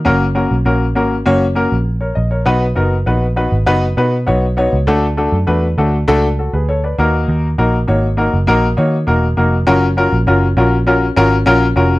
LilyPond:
<<
  \new Staff \with { instrumentName = "Upright piano" } { \time 4/4 \key fis \major \tempo 4 = 100 << { r2. r16 <ais' cis''>16 dis''16 <ais' cis''>16~ | <ais' cis''>16 r2. r8. | r2 r8 <fis' a'>16 <gis' b'>16 <a' cis''>16 <b' d''>8 r16 | r1 |
r1 | } \\ { <ais cis' fis' ais'>8 <ais cis' fis' ais'>8 <ais cis' fis' ais'>8 <ais cis' fis' ais'>8 <ais cis' fis' cis''>8 <ais cis' fis' ais'>8 r4 | <b dis' fis' b'>8 <b dis' fis' ais'>8 <b dis' fis' b'>8 <b dis' fis' b'>8 <b dis' fis' b'>8 <b dis' fis' b'>8 <b dis' fis' cis''>8 <b dis' fis' cis''>8 | <a d' fis' a'>8 <a d' fis' a'>8 <a d' fis' b'>8 <a d' fis' a'>8 <a d' fis' a'>8 r4 <ais dis' fis' ais'>8~ | <ais dis' fis' ais'>8 <ais dis' fis' ais'>8 <ais dis' fis' cis''>8 <ais dis' fis' ais'>8 <ais dis' fis' ais'>8 <ais dis' fis' cis''>8 <ais dis' fis' ais'>8 <ais dis' fis' ais'>8 |
<cis' eis' fis' ais'>8 <cis' eis' fis' ais'>8 <cis' eis' fis' ais'>8 <cis' eis' fis' ais'>8 <cis' eis' fis' ais'>8 <cis' eis' fis' ais'>8 <cis' eis' fis' ais'>8 <cis' eis' fis' ais'>8 | } >> }
  \new Staff \with { instrumentName = "Picked electric bass" } { \clef bass \time 4/4 \key fis \major fis,,8. b,,16 ais,,8 gis,,8 fis,,8. ais,,8. ais,,8 | b,,8 fis,,8 ais,,8. gis,,16 fis,,8 b,8 b,,8. cis,16 | d,8. fis,16 e,8 d,8 cis,8. d,8. dis,8 | dis,8 ais,,8 gis,,8. fis,,16 ais,,8 dis8 e,,8 eis,,8 |
fis,,8. ais,,16 fis,,8 ais,,4 gis,,8 ais,,8 eis,,8 | }
>>